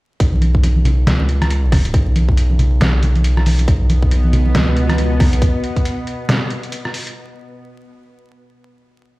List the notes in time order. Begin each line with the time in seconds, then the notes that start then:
0.20 B1, kick, closed hi-hat
0.33 muted conga
0.41 closed hi-hat, high conga
0.55 kick
0.63 closed hi-hat, muted conga
0.76 high conga
0.85 closed hi-hat, muted conga, low conga
1.07 C#2, snare, closed hi-hat, high conga
1.20 muted conga
1.29 closed hi-hat
1.42 cross-stick, closed hi-hat, muted conga, high conga
1.50 closed hi-hat
1.72 kick, cross-stick, open hi-hat, muted conga, high conga, low conga
1.85 closed hi-hat
1.94 B1, kick, closed hi-hat, muted conga
2.16 closed hi-hat, high conga
2.29 kick, muted conga
2.37 closed hi-hat
2.50 muted conga, high conga
2.59 closed hi-hat, low conga
2.80 B1, snare, closed hi-hat, muted conga, high conga
3.03 closed hi-hat, muted conga, low conga
3.16 closed hi-hat, high conga
3.24 closed hi-hat
3.37 cross-stick, muted conga
3.46 open hi-hat, high conga
3.59 closed hi-hat, muted conga
3.68 B1 B2 B3, kick, closed hi-hat
3.90 closed hi-hat, muted conga, high conga
4.02 kick
4.11 closed hi-hat, muted conga
4.24 high conga
4.33 closed hi-hat, low conga
4.46 muted conga
4.55 C#2, snare, closed hi-hat, high conga
4.67 muted conga
4.77 closed hi-hat
4.89 cross-stick, closed hi-hat, high conga
4.98 closed hi-hat, muted conga
5.15 C2
5.20 kick, cross-stick, open hi-hat, muted conga, high conga, low conga
5.33 closed hi-hat
5.42 kick, closed hi-hat
5.64 closed hi-hat
5.76 kick, closed hi-hat
5.85 closed hi-hat
6.07 closed hi-hat
6.29 snare, closed hi-hat
6.51 closed hi-hat
6.63 closed hi-hat
6.72 closed hi-hat
6.85 cross-stick
6.94 open hi-hat
7.07 closed hi-hat